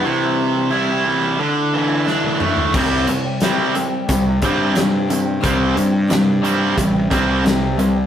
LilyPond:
<<
  \new Staff \with { instrumentName = "Steel-string acoustic guitar" } { \time 4/4 \key c \lydian \tempo 4 = 89 <c e g c' e'>8 <e g c' e'>16 <g c' e'>16 <c e g c' e'>16 <g c' e'>16 <e g c' e'>16 <g c' e'>16 <d a d' e'>16 <a d' e'>8 <a d' e'>16 <d a d' e'>8 <d a d' e'>8 | <c e g c' g'>8. <g c' g'>16 <c e g c' g'>16 <g c' g'>8 <g c' g'>8 <g c' g'>16 <e g c'>8 <c e g c' g'>8 <e g c' g'>16 <g c' g'>16 | <c e g c' g'>8. <g c' g'>16 <c e g c' g'>16 <g c' g'>8 <g c' g'>8 <g c' g'>16 <e g c' g'>16 <g c' g'>16 <c e g c' g'>8 <e g c' g'>16 <g c' g'>16 | }
  \new Staff \with { instrumentName = "Distorted electric guitar" } { \clef bass \time 4/4 \key c \lydian c4 e'8 g8 d8 e8 d'8 a8 | <c g c'>8 <c g>8 <c g c'>8 <c g>8 <c g>8 <c g c'>8 <c g>8 <c g>8 | <c g c'>8 <c g>8 <c g>8 <c g c'>8 <c g>8 <c g c'>8 <c g>8 <c g>8 | }
  \new Staff \with { instrumentName = "Overdriven electric guitar" } { \clef bass \time 4/4 \key c \lydian c4 g8 e8 d8 d'8 e'8 a8 | <c g c'>8 <c g>8 <c g c'>8 <c g>8 <c g>8 <c g c'>8 <c g>8 <c g>8 | <c g c'>8 <c g>8 <c g>8 <c g c'>8 <c g>8 <c g c'>8 <c g>8 <c g>8 | }
  \new Staff \with { instrumentName = "Picked electric bass" } { \clef bass \time 4/4 \key c \lydian r1 | c,8 r4. c,8 g,4. | c,8 g,4. a,,8 c,4. | }
  \new DrumStaff \with { instrumentName = "Drums" } \drummode { \time 4/4 r4 r4 r4 sn16 tommh16 toml16 tomfh16 | <cymc bd>8 hh8 <hh sn>8 hh8 <hh bd>8 <hh bd>8 <hh sn>8 hh8 | <hh bd>8 hh8 <hh sn>8 hh8 <hh bd>8 <hh bd>8 <hh sn>8 hh8 | }
>>